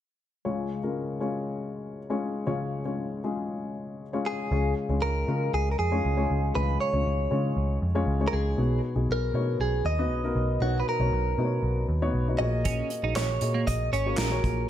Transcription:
0.45 C#2 C#3 G#3 C#4 F4 C#5
0.83 G#3 C#4 F4 A#4
1.20 G#3 C#4 F4 C#5
2.10 G#3 C#4 F4 C#5
2.46 C#2 C#3 G#3 C#4 F4 C#5
2.85 G#3 C#4 F4 C#5
3.24 G#3 C#4 F4 G#4
4.13 G#3 C#4 F4 C#5
4.26 G#4
4.51 C#2 C#3 G#3 C#4 F4 C#5
4.89 C#2 G#3 C#4 F4 C#5
5.02 C#2 A#4
5.27 C#3 G#3 C#4 F4 A#4
5.54 C#2 G#4
5.71 A#4
5.79 F2 G#4
5.92 G#3 C#4 F4 C#5
6.05 C#2
6.17 G#3 C#4 F4 C#5
6.30 C#2
6.55 C#2 C#3 G#3 C#4 F4 G#4 B4
6.80 C#5
6.93 C#2 G#3 C#4 F4 C#5
7.06 C#2
7.30 C#3 G#3 C#4 F4 C#5
7.57 C#2
7.82 F2
7.95 G#3 C#4 F4 C#5
8.06 C#2
8.20 G#3 C#4 F4 C#5
8.28 A#4
8.33 C#2 G#4
8.57 B1 B2 B3 D#4 F#4 C#5
8.95 B1 B3 D#4 F#4 G#4
9.09 B1 A#4
9.34 B2 B3 D#4 F#4 C#5
9.60 B1 G#4
9.85 D#2 D#5
9.99 B3 D#4 F#4 D#5
10.10 B1
10.24 B3 D#4 F#4 A#4
10.36 B1
10.61 B1 B2 B3 D#4 F#4 C#5
10.80 B4
10.89 A#4
11.00 B1 B3 D#4 F#4 C#5
11.12 B1
11.38 B2 B3 D#4 F#4 B4
11.45 C#5
11.63 B1
11.89 D#2
12.02 B3 D#4 F#4 C#5
12.13 B1
12.28 B3 D#4 F#4 C#5
12.39 A#1 A#2 A#3 F#4 G#4 C#5 D#5
12.65 C#4, kick, closed hi-hat
12.90 closed hi-hat
13.03 A#1 A#3 D#4 F#4 G#4 D#5
13.16 A#1 C#4 C#5, snare, clap, closed hi-hat
13.41 A#2 A#3 F#4 G#4 D#5, closed hi-hat
13.54 A#3
13.67 A#1 D#5, kick, closed hi-hat
13.92 G#1 C#4 C#5, closed hi-hat
14.06 A#3 F#4 G#4 C#5
14.18 A#1 A#4, snare, clap, closed hi-hat
14.31 A#3 F#4 G#4 C#5
14.44 A#1 A#2, kick, closed hi-hat

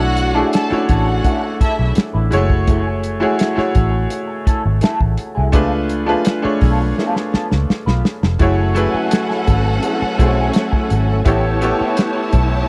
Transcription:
Already playing: B1 A3 D4 E4 F#4 C#5 F#5
0.17 muted clean electric guitar stroke, closed hi-hat
0.34 A3 D4 E4 F#4 G#4 A4
0.53 A4 A5, muted clean electric guitar stroke, snare, closed hi-hat
0.70 A3 C#4 E4 F#4 C#5, muted clean electric guitar stroke, muted fingered electric bass stroke
0.77 D4
0.88 A1 D4 E4 F#4 A4 F#5, kick, closed hi-hat
1.06 muted clean electric guitar stroke
1.24 D4 E4 A4, kick, closed hi-hat
1.42 muted clean electric guitar stroke
1.60 D4 E4 A4 E5, muted fingered electric bass stroke, kick, closed hi-hat
1.78 B1, muted clean electric guitar stroke
1.95 muted clean electric guitar stroke, muted fingered electric bass stroke, snare, closed hi-hat
2.14 A1 D4 E4 B4
2.30 F#1 G#3 E4 F#4 G#4 C#5, muted clean electric guitar stroke, closed hi-hat
2.37 A3
2.49 muted clean electric guitar stroke, kick
2.67 A3 E4 G#4, kick, closed hi-hat
3.03 muted clean electric guitar stroke, closed hi-hat
3.20 A3 E4 F#4 G#4 C#5
3.38 A3 E4 G#4, snare, closed hi-hat
3.56 A3 E4 F#4 G#4 C#5, muted clean electric guitar stroke, muted fingered electric bass stroke, snare
3.74 A1 A3 E4 G#4, kick, closed hi-hat
3.92 muted clean electric guitar stroke
4.10 muted clean electric guitar stroke, closed hi-hat
4.28 muted clean electric guitar stroke
4.45 A3 E4 A4, muted fingered electric bass stroke, kick, closed hi-hat
4.64 G#1, muted clean electric guitar stroke
4.81 A3 E4 A4, snare, closed hi-hat
5.01 A1, kick
5.17 muted clean electric guitar stroke, closed hi-hat
5.35 C2 A3 E4 G#4
5.52 C#2 A3 B3 D4 F4 G#4 A4 B4, kick, closed hi-hat
5.89 muted clean electric guitar stroke, closed hi-hat
6.06 A3 B3 D4 F4 G#4 A4 B4
6.25 muted clean electric guitar stroke, snare, closed hi-hat
6.42 A3 D4 F4 G#4 C#5, muted clean electric guitar stroke, muted fingered electric bass stroke
6.61 B1 B3 F4 A4, kick, open hi-hat
6.79 muted clean electric guitar stroke
6.97 B3 F4 A4, snare
7.15 muted clean electric guitar stroke, snare
7.32 B3 F4 A4, muted fingered electric bass stroke, snare
7.50 C#2, muted clean electric guitar stroke, snare
7.69 muted clean electric guitar stroke, muted fingered electric bass stroke, snare
7.86 B1 B3 F4 B4, snare
8.05 muted clean electric guitar stroke, snare
8.23 F1, muted clean electric guitar stroke, snare
8.39 F#1 F#3 A3 C#4 E4 F#4 G#4 A4 C#5 F#5 G#5, kick, closed hi-hat
8.75 A3 E4 F#4 G#4 B4, closed hi-hat
8.94 A3 E4 G#4, muted fingered electric bass stroke
9.11 muted clean electric guitar stroke, snare, closed hi-hat
9.29 A3 E4 G#4, snare
9.47 G#1, muted clean electric guitar stroke, kick, closed hi-hat
9.65 muted clean electric guitar stroke
9.83 A3 E4 G#4, closed hi-hat
10.02 muted fingered electric bass stroke
10.18 B1 A3 E4 F#4 G#4 C5, muted clean electric guitar stroke, kick, closed hi-hat
10.27 C#5
10.36 A3 E4 G#4
10.53 muted clean electric guitar stroke, snare, closed hi-hat
10.72 A3 E4 G#4, kick
10.90 G#1, muted clean electric guitar stroke, closed hi-hat
11.07 muted clean electric guitar stroke
11.24 A1 A3 B3 E4 G4 A4 C#5 A5, kick, closed hi-hat
11.61 B3 E4 G4 A4 C#5, muted clean electric guitar stroke, closed hi-hat
11.79 E4 G4 C#5, muted fingered electric bass stroke
11.97 muted clean electric guitar stroke, snare, closed hi-hat
12.15 E4 G4 C#5
12.32 B1, muted clean electric guitar stroke, kick, closed hi-hat
12.51 muted clean electric guitar stroke

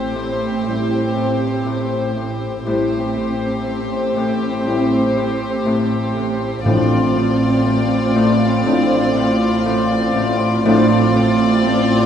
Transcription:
Already playing: A1 A2 A3 C4 G4 C5 G6
0.15 A2
0.65 A2 G3 C4 E4
1.16 A2
1.66 A2
2.17 A2
2.65 A1 A2 G3 C4 E4 G4 C5
3.16 A2
3.67 A3
4.16 A2
4.65 A2 G3 C4 E4
5.17 A2
5.66 A2
6.16 A2
6.65 A1 A2 F3 C4 D4 F4 D5
7.16 A2
7.66 A3
8.16 A2
8.66 A2 F3 C4 D4
9.15 A2
9.66 A2
10.16 A2
10.65 A1 A2 F3 C4 D4 F4 D5
11.16 A2
11.66 A3

